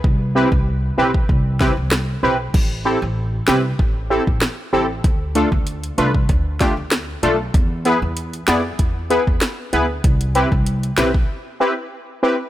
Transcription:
<<
  \new Staff \with { instrumentName = "Synth stab" } { \time 4/4 \key a \minor \tempo 4 = 96 r8 <c' e' g' b'>8 r8 <c' e' g' b'>8 r8 <c' e' g' b'>8 r8 <c' e' g' b'>8 | r8 <c' e' g' a'>8 r8 <c' e' g' b'>8 r8 <c' e' g' a'>8 r8 <c' e' g' a'>8 | r8 <a d' f' a'>8 r8 <a d' f' b'>8 r8 <a d' f' g'>8 r8 <a d' f' a'>8 | r8 <b e' gis' b'>8 r8 <b e' gis' d''>8 r8 <b e' gis' b'>8 r8 <b e' gis' b'>8 |
r8 <c' e' g' b'>8 r8 <c' e' g' b'>8 r8 <c' e' g' b'>8 r8 <c' e' g' b'>8 | }
  \new Staff \with { instrumentName = "Upright bass" } { \clef bass \time 4/4 \key a \minor c,8. c,8. b,,8 c,8. c,8. b,,8 | a,,8. a,,8. c,8 a,,8. a,,16 r8 a,,8 | d,8. d,8. c,8 d,8. d,8. b,,8 | e,8. e,8. f,8 e,8. e,16 r8 d,8 |
c,8. c,8. b,,8 r2 | }
  \new DrumStaff \with { instrumentName = "Drums" } \drummode { \time 4/4 bd8. bd16 r8. bd16 bd8 <bd sn>8 <ss sn>4 | <cymc bd>4 r8 <ss sn>8 bd8. bd16 <ss sn>4 | <hh bd>8 hh16 bd16 hh16 hh16 hh16 bd16 <hh bd>8 <hh bd sn>8 <hh ss sn>8 hh8 | <hh bd>8 hh8 hh16 hh16 <hh ss sn>8 <hh bd>8 hh16 bd16 <hh ss sn>8 hh8 |
<hh bd>16 hh16 hh16 bd16 hh16 hh16 <hh ss sn>16 bd16 r4 r4 | }
>>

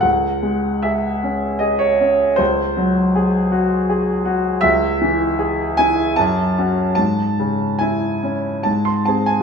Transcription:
\new Staff \with { instrumentName = "Grand piano" } { \time 3/4 \key cis \minor \tempo 4 = 77 << { fis''4 e''4 dis''16 cis''8. | bis'2. | e''4. gis''8 a''4 | a''4 gis''4 a''16 bis''16 a''16 gis''16 | } \\ { cis,8 gis8 gis'8 cis'8 gis'8 cis'8 | cis,8 fis8 gis'8 fis'8 gis'8 fis'8 | cis,8 e8 gis'8 e'8 fis,8 <cis' fis'>8 | gis,8 cis8 e'8 cis'8 gis,8 <bis gis'>8 | } >> }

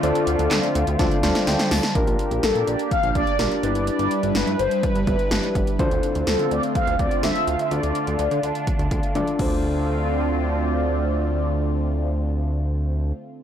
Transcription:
<<
  \new Staff \with { instrumentName = "Analog polysynth" } { \time 4/4 \key d \minor \tempo 4 = 125 d''2. r4 | r4 a'8 d''8 f''8 d''4. | d''4 b'8 c''8 b'8 b'4 r8 | r4 a'8 d''8 f''8 d''8 e''8 f''16 e''16 |
d''2. r8 d''8~ | d''1~ | d''1 | }
  \new Staff \with { instrumentName = "Synth keys" } { \time 4/4 \key d \minor << { r2 r8 f''8 g''8 a''8 | r1 | r1 | r1 |
r1 | r1 | r1 | } \\ { <d' f' a' c'' d''>4. r8 <d' f' a' c'' d''>8 <d' f' a' c'' d''>4 r8 | <d' f' g' bes'>4. r4. <d' f' g' bes'>8 <d' e' g' b'>8~ | <d' e' g' b'>4 r2 <d' e' g' b'>4 | <d' f' a' c''>4. r4. <d' f' a' c''>4 |
<d' f' a' d''>4. r4. <d' f' a' d''>8 <d' f' a' c''>8~ | <d' f' a' c''>1~ | <d' f' a' c''>1 | } >> }
  \new Staff \with { instrumentName = "Analog synth pad" } { \time 4/4 \key d \minor << { <d a f'>1 | <bes g'>2.~ <bes g'>8 <g b'>8~ | <g b'>1 | <d a f'>1~ |
<d a f'>2.~ <d a f'>8 <d a c' f'>8~ | <d a c' f'>1~ | <d a c' f'>1 | } \\ { c'1 | d'2.~ d'8 e'8~ | e'1 | c'1 |
d'2.~ d'8 r8 | r1 | r1 | } >> }
  \new Staff \with { instrumentName = "Analog synth bass" } { \clef bass \time 4/4 \key d \minor d,16 r16 d,16 d,16 d,16 r16 d,16 d,16 d,16 r16 d,16 r16 d,16 r16 d,16 r16 | bes,,16 bes,,16 r16 bes,,16 bes,,16 bes,16 bes,,16 r8 bes,,16 bes,,16 r16 bes,,16 r16 g,,8~ | g,,16 g,,16 r16 g,,16 g,,16 g,16 g,,16 r8 g,,16 g,,16 r16 g,,16 r16 g,,16 r16 | d,16 d,16 r16 d,16 d,16 d16 d,16 r8 d,16 d,16 r16 d,16 r16 d,16 r16 |
d,16 d,16 r16 d,16 d,16 d16 d,16 r8 d,16 d,16 r16 d,16 r16 d,8~ | d,1~ | d,1 | }
  \new DrumStaff \with { instrumentName = "Drums" } \drummode { \time 4/4 hh16 hh16 hh16 hh16 <hc hh sn>16 hh16 hh16 hh16 <hh bd sn>16 hh16 <hh sn>16 <hh sn>16 <hh sn>16 <hh sn>16 <hho sn>16 <hh sn>16 | <hh bd>16 hh16 hh16 hh16 <hh sn>16 hh16 hh16 hh16 <hh bd>16 hh16 <hh bd>16 hh16 <hh sn>16 hh16 hh16 hh16 | hh16 hh16 hh16 hh16 <hh sn>16 hh16 hh16 hh16 <hh bd>16 hh16 <hh bd>16 hh16 <hh sn>16 hh16 <hh bd>16 hh16 | <hh bd>16 hh16 hh16 hh16 <hh sn>16 hh16 hh16 hh16 <hh bd>16 hh16 <hh bd>16 hh16 <hh sn>16 hh16 hh16 hh16 |
hh16 hh16 hh16 hh16 hh16 hh16 hh16 hh16 <hh bd>16 hh16 <hh bd>16 hh16 <hh tommh>16 hh16 <cymc bd>8 | r4 r4 r4 r4 | r4 r4 r4 r4 | }
>>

